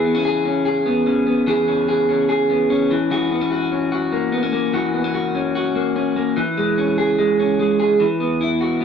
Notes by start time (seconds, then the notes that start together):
Already playing: E3 B3 G#4
0.04 B3
0.15 C#4
0.25 G#4
0.45 C#4
0.65 G#4
0.86 B3
1.06 C#4
1.27 B3
1.47 E3 G#4
1.68 C#4
1.88 G#4
2.09 C#4
2.29 G#4
2.50 B3
2.70 C#4
2.91 E3
3.11 E3 F#4
3.31 B3
3.41 C#4
3.51 F#4
3.72 C#4
3.92 F#4
4.12 A#3
4.32 B3
4.43 C#4
4.53 A#3
4.73 E3 F#4
4.94 B3
5.04 C#4
5.15 F#4
5.35 C#4
5.55 F#4
5.75 A#3
5.96 C#4
6.16 A#3
6.37 E3
6.57 G#3
6.78 C#4
6.98 G#4
7.18 G#3
7.39 C#4
7.59 G#3
7.80 G#4
8.00 E3
8.20 B3
8.41 E4
8.60 F#4
8.81 B3